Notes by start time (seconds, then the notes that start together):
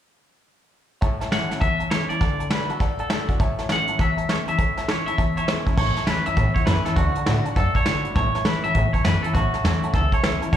1.01 A2 C#5 E5 A5, kick, closed hi-hat
1.21 C#5 E5 A5, snare, closed hi-hat
1.31 E3 A3 C#4 E4 C#5 E5 F#5 A5, snare, closed hi-hat
1.50 C#4 E4 C#5 E5 A5, snare, closed hi-hat
1.60 E2 C#5 E5 A5, kick, closed hi-hat
1.79 C#5 E5 A5, closed hi-hat
1.90 E3 A3 C#4 E4 C#5 E5 A5, snare, closed hi-hat
2.09 C#4 E4 C#5 D5 E5 A5, closed hi-hat
2.21 D3 D5 F#5 A5, kick, snare, closed hi-hat
2.39 D5 F#5 A5, closed hi-hat
2.50 D3 A3 D4 F#4 B4 D5 F#5 A5, snare, closed hi-hat
2.69 D4 F#4 A4 D5 F#5 A5, closed hi-hat
2.80 A2 D5 F#5 A5, kick, snare, closed hi-hat
2.99 A4 D5 F#5 A5, closed hi-hat
3.10 D3 A3 D4 F#4 D5 F#5 A5, snare, closed hi-hat
3.29 D4 F#4 D5 F#5 G#5, kick, closed hi-hat
3.40 A2 C#5 E5 A5, kick, closed hi-hat
3.58 C#5 E5 A5, snare, closed hi-hat
3.69 E3 A3 C#4 E4 E5 F#5 A5, snare, closed hi-hat
3.88 C#4 E4 C#5 E5 A5, closed hi-hat
3.99 E2 C#5 E5 A5, kick, snare, closed hi-hat
4.17 C#5 E5 A5, closed hi-hat
4.29 E3 A3 C#4 E4 C#5 A5, snare, closed hi-hat
4.48 C#4 E4 C#5 E5 A5, closed hi-hat
4.58 A2 C#5 E5 A5, kick, closed hi-hat
4.77 C#5 E5 A5, snare, closed hi-hat
4.88 E3 A3 C#4 E4 C#5 E5 A5, snare, closed hi-hat
5.06 C#4 E4 C#5 E5 A5, closed hi-hat
5.18 E2 C#5 E5 A5, kick, closed hi-hat
5.37 C#5 E5 A5, closed hi-hat
5.47 E3 A3 C#4 E4 C#5 A5, snare, closed hi-hat
5.66 C#4 E4 C#5 E5 A5, kick, closed hi-hat
5.77 A1 A2 C#5 E5 A5, kick, crash
5.96 C#5 E5 A5, muted upright bass stroke, snare, closed hi-hat
6.07 E2 E3 A3 C#4 E4 B4 C#5 E5 A5, snare, closed hi-hat
6.26 F#2 C#4 E4 C#5 E5 A5, closed hi-hat
6.37 E2 A2 C#5 E5 A5, kick, snare, closed hi-hat
6.54 C#5 E5 F#5, kick, closed hi-hat
6.66 F#2 E3 A3 C#4 E4 B4 C#5 E5 A5, snare, closed hi-hat
6.85 C#4 E4 A4 C#5 E5 A5, muted upright bass stroke, snare, closed hi-hat
6.96 D2 D3 F#4 D5 F#5 A5, kick, snare, closed hi-hat
7.15 D5 F#5 A5, muted upright bass stroke, closed hi-hat
7.26 A2 D3 A3 D4 F#4 D5 F#5 A5, snare, closed hi-hat
7.45 D4 F#4 D5 F#5 A5, muted upright bass stroke, closed hi-hat
7.56 F#2 A2 A4 D5 F#5 A5, kick, snare, closed hi-hat
7.75 C#5 D5 F#5 A5, muted upright bass stroke, kick, closed hi-hat
7.85 F#2 D3 A3 D4 F#4 D5 F#5, snare, closed hi-hat
8.04 G#1 D4 F#4 D5 F#5 B5, closed hi-hat
8.15 A1 A2 C#5 E5 A5, kick, snare, closed hi-hat
8.35 C#5 E5 A5, muted upright bass stroke, snare, closed hi-hat
8.45 E3 A3 C#4 E4 B4 C#5 E5 A5, snare, closed hi-hat
8.64 F#2 C#4 E4 C#5 E5 A5, closed hi-hat
8.75 E2 A2 C#5 E5 A5, kick, closed hi-hat
8.93 C#5 E5 A5, muted upright bass stroke, kick, closed hi-hat
9.05 F#2 E3 A3 C#4 E4 B4 C#5 E5 A5, snare, closed hi-hat
9.22 C#4 E4 A4 C#5 E5 A5, muted upright bass stroke, closed hi-hat
9.34 A1 F#4 C#5 E5 A5, kick, snare, closed hi-hat
9.53 C#5 E5 A5, muted upright bass stroke, snare, closed hi-hat
9.64 E2 E3 A3 C#4 E4 C#5 E5 A5, snare, closed hi-hat
9.83 C#5 E5 A5, muted upright bass stroke, closed hi-hat
9.93 C#2 E2 A4 C#5 E5 A5, kick, snare, closed hi-hat
10.12 C#5 E5 A5, kick, closed hi-hat
10.23 C#2 E3 A3 C#4 E4 C#5 E5 A5, snare, closed hi-hat
10.41 A1 C#4 E4 C#5 E5 A5, closed hi-hat
10.52 D2 D3 C#5 D5 F#5 A5, kick, snare, closed hi-hat